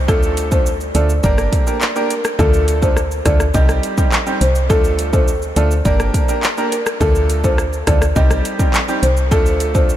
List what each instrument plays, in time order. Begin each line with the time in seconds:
0.08 fm bass D2, grand piano A3 D4 F4 A4, marimba A4, kick, shaker
0.23 shaker
0.37 closed hi-hat, shaker
0.51 grand piano A3 D4 F4 A4, marimba C5, kick, shaker
0.66 shaker
0.81 shaker
0.95 fm bass D2, grand piano A3 D4 F4 A4, marimba D5, closed hi-hat, shaker
1.09 shaker
1.23 fm bass G1, grand piano A#3 D4 G4 A#4, marimba D5, kick, shaker
1.38 cross-stick, shaker
1.52 kick, closed hi-hat, shaker
1.67 grand piano A#3 D4 G4 A#4, shaker
1.81 clap, shaker
1.96 grand piano A#3 D4 G4 A#4, shaker
2.10 marimba A#4, closed hi-hat, shaker
2.25 cross-stick, shaker
2.39 fm bass D2, grand piano A3 D4 F4 A4, marimba A4, kick, shaker
2.54 shaker
2.68 closed hi-hat, shaker
2.82 grand piano A3 D4 F4 A4, marimba C5, kick, shaker
2.97 cross-stick, shaker
3.11 shaker
3.25 fm bass D2, grand piano A3 D4 F4 A4, marimba D5, kick, cross-stick, closed hi-hat, shaker
3.40 cross-stick, shaker
3.54 fm bass C2, grand piano G3 C4 D#4 G4, marimba D#5, kick, shaker
3.69 cross-stick, shaker
3.83 closed hi-hat, shaker
3.97 grand piano G3 C4 D#4 G4, kick, shaker
4.12 clap, shaker
4.26 grand piano G3 C4 D#4 G4, shaker
4.41 fm bass C2, marimba C5, closed hi-hat, shaker
4.55 shaker
4.70 fm bass D2, grand piano A3 D4 F4 A4, marimba A4, kick, shaker
4.84 shaker
4.99 closed hi-hat, shaker
5.13 grand piano A3 D4 F4 A4, marimba C5, kick, shaker
5.28 shaker
5.42 shaker
5.56 fm bass D2, grand piano A3 D4 F4 A4, marimba D5, closed hi-hat, shaker
5.71 shaker
5.85 fm bass G1, grand piano A#3 D4 G4 A#4, marimba D5, kick, shaker
6.00 cross-stick, shaker
6.14 kick, closed hi-hat, shaker
6.28 grand piano A#3 D4 G4 A#4, shaker
6.43 clap, shaker
6.57 grand piano A#3 D4 G4 A#4, shaker
6.72 marimba A#4, closed hi-hat, shaker
6.86 cross-stick, shaker
7.00 fm bass D2, grand piano A3 D4 F4 A4, marimba A4, kick, shaker
7.15 shaker
7.30 closed hi-hat, shaker
7.44 grand piano A3 D4 F4 A4, marimba C5, kick, shaker
7.58 cross-stick, shaker
7.73 shaker
7.87 fm bass D2, grand piano A3 D4 F4 A4, marimba D5, kick, cross-stick, closed hi-hat, shaker
8.02 cross-stick, shaker
8.16 fm bass C2, grand piano G3 C4 D#4 G4, marimba D#5, kick, shaker
8.31 cross-stick, shaker
8.45 closed hi-hat, shaker
8.59 grand piano G3 C4 D#4 G4, kick, shaker
8.74 clap, shaker
8.88 grand piano G3 C4 D#4 G4, shaker
9.03 fm bass C2, marimba C5, closed hi-hat, shaker
9.17 shaker
9.31 fm bass D2, grand piano A3 D4 F4 A4, marimba A4, kick, shaker
9.46 shaker
9.60 closed hi-hat, shaker
9.74 grand piano A3 D4 F4 A4, marimba C5, kick, shaker
9.89 shaker